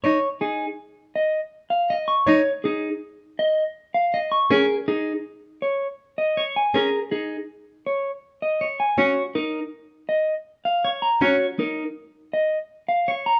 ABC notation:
X:1
M:6/4
L:1/8
Q:1/4=161
K:Bbm
V:1 name="Clean electric guitar"
d z A z3 e z2 f z d' | d z A z3 e z2 f z d' | B z A z3 d z2 e z a | B z A z3 d z2 e z a |
d z B z3 e z2 f z b | d z B z3 e z2 f z b |]
V:2 name="Clean electric guitar"
z2 E z6 z e z | z2 E z6 z e z | A z E z6 z d z | A z E z6 z d z |
G z E z6 z d z | G z E z6 z d z |]
V:3 name="Cello"
E z8 z3 | E z8 z3 | D z8 z3 | D z8 z3 |
D z8 z3 | D z8 z3 |]